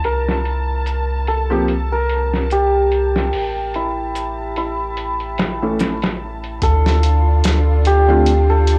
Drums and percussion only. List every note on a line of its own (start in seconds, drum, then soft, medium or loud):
0.04 closed hi-hat medium
0.28 snare soft
0.45 closed hi-hat medium
0.86 closed hi-hat medium
0.86 maracas medium
1.27 closed hi-hat medium
1.68 closed hi-hat medium
2.09 closed hi-hat medium
2.34 snare soft
2.50 closed hi-hat medium
2.50 maracas medium
2.92 closed hi-hat medium
3.16 snare soft
3.33 open hi-hat medium
3.74 closed hi-hat medium
4.15 closed hi-hat medium
4.15 maracas medium
4.56 closed hi-hat medium
4.97 closed hi-hat medium
5.20 closed hi-hat soft
5.38 snare loud
5.38 closed hi-hat medium
5.79 snare medium
5.79 closed hi-hat medium
5.79 maracas medium
6.02 snare medium
6.02 closed hi-hat medium
6.44 closed hi-hat medium
6.62 kick loud
6.62 closed hi-hat medium
6.86 snare soft
7.03 closed hi-hat medium
7.44 snare loud
7.44 closed hi-hat medium
7.44 maracas medium
7.85 closed hi-hat medium
8.26 closed hi-hat medium
8.67 closed hi-hat medium